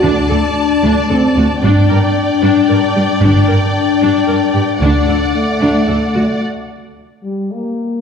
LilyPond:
<<
  \new Staff \with { instrumentName = "Violin section" } { \time 3/4 \key g \minor \tempo 4 = 113 <d'' a''>2. | <d'' g''>2.~ | <d'' g''>2. | <d'' fis''>2. |
r2. | }
  \new Staff \with { instrumentName = "Viola section" } { \time 3/4 \key g \minor << { d''2. | d''2.~ | d''2. | d''2. |
r2. | } \\ { d'8 a'8 r8 d'8 a'8 fis'8 | d'8 bes'8 r8 d'8 bes'8 g'8 | d'8 bes'8 r8 d'8 bes'8 g'8 | d'8 a'8 r8 d'8 a'8 fis'8 |
r2. | } >> }
  \new Staff \with { instrumentName = "French horn section" } { \time 3/4 \key g \minor d'2 c'4 | d'2. | d'2. | d'4 a2 |
r4. g8 bes4 | }
  \new Staff \with { instrumentName = "Cello section" } { \clef bass \time 3/4 \key g \minor d,8 d,8 r8 d,8 d,8 d,8 | g,8 g,8 r8 g,8 g,8 g,8 | g,8 g,8 r8 g,8 g,8 g,8 | d,8 d,8 r8 d,8 d,8 d,8 |
r2. | }
  \new Staff \with { instrumentName = "Double bass section" } { \clef bass \time 3/4 \key g \minor d,8 r2 r8 | g,,8 r2 r8 | g,,8 r2 r8 | d,8 r2 r8 |
r2. | }
>>